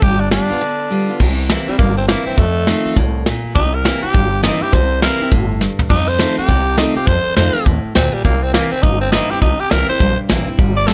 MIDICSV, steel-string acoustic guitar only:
0, 0, Header, 1, 2, 480
1, 0, Start_track
1, 0, Tempo, 293542
1, 39, Time_signature, 4, 2, 24, 8
1, 17881, End_track
2, 0, Start_track
2, 0, Title_t, "Steel-string acoustic guitar"
2, 0, Program_c, 0, 25
2, 39, Note_on_c, 0, 55, 81
2, 497, Note_off_c, 0, 55, 0
2, 517, Note_on_c, 0, 55, 57
2, 536, Note_on_c, 0, 59, 66
2, 543, Note_on_c, 0, 65, 77
2, 797, Note_off_c, 0, 65, 0
2, 809, Note_off_c, 0, 55, 0
2, 816, Note_on_c, 0, 65, 62
2, 818, Note_off_c, 0, 59, 0
2, 840, Note_on_c, 0, 59, 52
2, 993, Note_off_c, 0, 65, 0
2, 1000, Note_on_c, 0, 50, 90
2, 1004, Note_off_c, 0, 59, 0
2, 1478, Note_on_c, 0, 55, 66
2, 1496, Note_on_c, 0, 59, 68
2, 1503, Note_on_c, 0, 65, 73
2, 1766, Note_off_c, 0, 65, 0
2, 1771, Note_off_c, 0, 55, 0
2, 1780, Note_off_c, 0, 59, 0
2, 1786, Note_on_c, 0, 65, 53
2, 1810, Note_on_c, 0, 59, 45
2, 1929, Note_off_c, 0, 50, 0
2, 1957, Note_on_c, 0, 48, 85
2, 1959, Note_off_c, 0, 65, 0
2, 1971, Note_off_c, 0, 59, 0
2, 2442, Note_on_c, 0, 52, 84
2, 2451, Note_on_c, 0, 58, 93
2, 2457, Note_on_c, 0, 60, 96
2, 2468, Note_on_c, 0, 64, 93
2, 2728, Note_off_c, 0, 64, 0
2, 2734, Note_off_c, 0, 52, 0
2, 2738, Note_off_c, 0, 58, 0
2, 2741, Note_off_c, 0, 60, 0
2, 2748, Note_on_c, 0, 64, 59
2, 2768, Note_on_c, 0, 60, 53
2, 2888, Note_off_c, 0, 48, 0
2, 2921, Note_off_c, 0, 64, 0
2, 2928, Note_on_c, 0, 43, 94
2, 2931, Note_off_c, 0, 60, 0
2, 3416, Note_on_c, 0, 52, 91
2, 3426, Note_on_c, 0, 58, 82
2, 3433, Note_on_c, 0, 60, 91
2, 3440, Note_on_c, 0, 64, 94
2, 3854, Note_off_c, 0, 43, 0
2, 3875, Note_off_c, 0, 52, 0
2, 3880, Note_off_c, 0, 58, 0
2, 3884, Note_off_c, 0, 60, 0
2, 3888, Note_off_c, 0, 64, 0
2, 3890, Note_on_c, 0, 41, 88
2, 4371, Note_on_c, 0, 51, 91
2, 4374, Note_on_c, 0, 57, 92
2, 4383, Note_on_c, 0, 60, 88
2, 4396, Note_on_c, 0, 65, 113
2, 4815, Note_off_c, 0, 41, 0
2, 4833, Note_off_c, 0, 51, 0
2, 4835, Note_off_c, 0, 57, 0
2, 4839, Note_off_c, 0, 60, 0
2, 4845, Note_off_c, 0, 65, 0
2, 4852, Note_on_c, 0, 45, 95
2, 5314, Note_off_c, 0, 45, 0
2, 5331, Note_on_c, 0, 46, 90
2, 5793, Note_off_c, 0, 46, 0
2, 5808, Note_on_c, 0, 48, 92
2, 6290, Note_on_c, 0, 52, 94
2, 6299, Note_on_c, 0, 58, 101
2, 6311, Note_on_c, 0, 60, 94
2, 6311, Note_on_c, 0, 64, 104
2, 6567, Note_off_c, 0, 64, 0
2, 6579, Note_off_c, 0, 52, 0
2, 6584, Note_off_c, 0, 58, 0
2, 6587, Note_on_c, 0, 64, 66
2, 6590, Note_off_c, 0, 60, 0
2, 6610, Note_on_c, 0, 60, 45
2, 6734, Note_off_c, 0, 48, 0
2, 6761, Note_on_c, 0, 43, 99
2, 6762, Note_off_c, 0, 64, 0
2, 6773, Note_off_c, 0, 60, 0
2, 7241, Note_on_c, 0, 52, 100
2, 7255, Note_on_c, 0, 58, 99
2, 7255, Note_on_c, 0, 60, 102
2, 7270, Note_on_c, 0, 64, 103
2, 7535, Note_off_c, 0, 52, 0
2, 7541, Note_off_c, 0, 64, 0
2, 7542, Note_off_c, 0, 58, 0
2, 7542, Note_off_c, 0, 60, 0
2, 7560, Note_on_c, 0, 64, 68
2, 7582, Note_on_c, 0, 60, 49
2, 7690, Note_off_c, 0, 43, 0
2, 7728, Note_off_c, 0, 64, 0
2, 7739, Note_off_c, 0, 60, 0
2, 7748, Note_on_c, 0, 48, 95
2, 8219, Note_on_c, 0, 52, 88
2, 8226, Note_on_c, 0, 58, 96
2, 8233, Note_on_c, 0, 60, 102
2, 8240, Note_on_c, 0, 64, 97
2, 8503, Note_off_c, 0, 52, 0
2, 8505, Note_off_c, 0, 64, 0
2, 8507, Note_off_c, 0, 58, 0
2, 8511, Note_off_c, 0, 60, 0
2, 8525, Note_on_c, 0, 64, 65
2, 8545, Note_on_c, 0, 60, 53
2, 8663, Note_off_c, 0, 48, 0
2, 8691, Note_off_c, 0, 64, 0
2, 8696, Note_on_c, 0, 45, 100
2, 8701, Note_off_c, 0, 60, 0
2, 9155, Note_off_c, 0, 45, 0
2, 9173, Note_on_c, 0, 43, 93
2, 9634, Note_off_c, 0, 43, 0
2, 9648, Note_on_c, 0, 41, 86
2, 10114, Note_on_c, 0, 51, 91
2, 10122, Note_on_c, 0, 57, 100
2, 10137, Note_on_c, 0, 60, 110
2, 10141, Note_on_c, 0, 65, 102
2, 10404, Note_off_c, 0, 65, 0
2, 10410, Note_off_c, 0, 51, 0
2, 10414, Note_off_c, 0, 57, 0
2, 10422, Note_off_c, 0, 60, 0
2, 10424, Note_on_c, 0, 65, 57
2, 10447, Note_on_c, 0, 60, 54
2, 10572, Note_off_c, 0, 41, 0
2, 10599, Note_off_c, 0, 65, 0
2, 10611, Note_off_c, 0, 60, 0
2, 10616, Note_on_c, 0, 48, 96
2, 11074, Note_on_c, 0, 51, 89
2, 11083, Note_on_c, 0, 57, 99
2, 11089, Note_on_c, 0, 60, 109
2, 11098, Note_on_c, 0, 65, 97
2, 11360, Note_off_c, 0, 65, 0
2, 11370, Note_off_c, 0, 51, 0
2, 11374, Note_off_c, 0, 57, 0
2, 11377, Note_off_c, 0, 60, 0
2, 11380, Note_on_c, 0, 65, 53
2, 11406, Note_on_c, 0, 60, 49
2, 11536, Note_off_c, 0, 48, 0
2, 11557, Note_off_c, 0, 65, 0
2, 11569, Note_off_c, 0, 60, 0
2, 11572, Note_on_c, 0, 41, 91
2, 12044, Note_on_c, 0, 51, 92
2, 12058, Note_on_c, 0, 57, 84
2, 12060, Note_on_c, 0, 60, 90
2, 12073, Note_on_c, 0, 65, 101
2, 12334, Note_off_c, 0, 51, 0
2, 12336, Note_off_c, 0, 65, 0
2, 12341, Note_off_c, 0, 57, 0
2, 12342, Note_off_c, 0, 60, 0
2, 12356, Note_on_c, 0, 65, 62
2, 12374, Note_on_c, 0, 60, 53
2, 12493, Note_off_c, 0, 41, 0
2, 12523, Note_on_c, 0, 45, 92
2, 12524, Note_off_c, 0, 65, 0
2, 12533, Note_off_c, 0, 60, 0
2, 12986, Note_off_c, 0, 45, 0
2, 13001, Note_on_c, 0, 46, 97
2, 13465, Note_off_c, 0, 46, 0
2, 13493, Note_on_c, 0, 48, 86
2, 13967, Note_on_c, 0, 52, 94
2, 13975, Note_on_c, 0, 58, 89
2, 13985, Note_on_c, 0, 60, 98
2, 13994, Note_on_c, 0, 64, 104
2, 14243, Note_off_c, 0, 64, 0
2, 14253, Note_off_c, 0, 52, 0
2, 14257, Note_off_c, 0, 58, 0
2, 14262, Note_on_c, 0, 64, 62
2, 14263, Note_off_c, 0, 60, 0
2, 14287, Note_on_c, 0, 60, 51
2, 14411, Note_off_c, 0, 48, 0
2, 14435, Note_off_c, 0, 64, 0
2, 14447, Note_off_c, 0, 60, 0
2, 14447, Note_on_c, 0, 43, 94
2, 14911, Note_on_c, 0, 52, 93
2, 14920, Note_on_c, 0, 58, 93
2, 14922, Note_on_c, 0, 60, 97
2, 14932, Note_on_c, 0, 64, 102
2, 15196, Note_off_c, 0, 64, 0
2, 15204, Note_off_c, 0, 52, 0
2, 15209, Note_off_c, 0, 58, 0
2, 15210, Note_off_c, 0, 60, 0
2, 15216, Note_on_c, 0, 64, 61
2, 15238, Note_on_c, 0, 60, 51
2, 15367, Note_off_c, 0, 43, 0
2, 15391, Note_off_c, 0, 64, 0
2, 15397, Note_on_c, 0, 48, 87
2, 15402, Note_off_c, 0, 60, 0
2, 15875, Note_on_c, 0, 52, 84
2, 15883, Note_on_c, 0, 58, 90
2, 15893, Note_on_c, 0, 60, 98
2, 15898, Note_on_c, 0, 64, 109
2, 16160, Note_off_c, 0, 64, 0
2, 16165, Note_off_c, 0, 52, 0
2, 16169, Note_off_c, 0, 58, 0
2, 16174, Note_off_c, 0, 60, 0
2, 16180, Note_on_c, 0, 64, 62
2, 16200, Note_on_c, 0, 60, 52
2, 16321, Note_off_c, 0, 48, 0
2, 16352, Note_off_c, 0, 64, 0
2, 16355, Note_on_c, 0, 43, 92
2, 16362, Note_off_c, 0, 60, 0
2, 16824, Note_on_c, 0, 52, 83
2, 16834, Note_on_c, 0, 58, 92
2, 16839, Note_on_c, 0, 60, 98
2, 16847, Note_on_c, 0, 64, 97
2, 17104, Note_off_c, 0, 64, 0
2, 17119, Note_off_c, 0, 52, 0
2, 17123, Note_off_c, 0, 58, 0
2, 17123, Note_on_c, 0, 64, 61
2, 17126, Note_off_c, 0, 60, 0
2, 17149, Note_on_c, 0, 60, 50
2, 17279, Note_off_c, 0, 43, 0
2, 17302, Note_off_c, 0, 64, 0
2, 17312, Note_on_c, 0, 55, 90
2, 17315, Note_off_c, 0, 60, 0
2, 17769, Note_off_c, 0, 55, 0
2, 17789, Note_on_c, 0, 55, 91
2, 17805, Note_on_c, 0, 59, 93
2, 17817, Note_on_c, 0, 65, 99
2, 17881, Note_off_c, 0, 55, 0
2, 17881, Note_off_c, 0, 59, 0
2, 17881, Note_off_c, 0, 65, 0
2, 17881, End_track
0, 0, End_of_file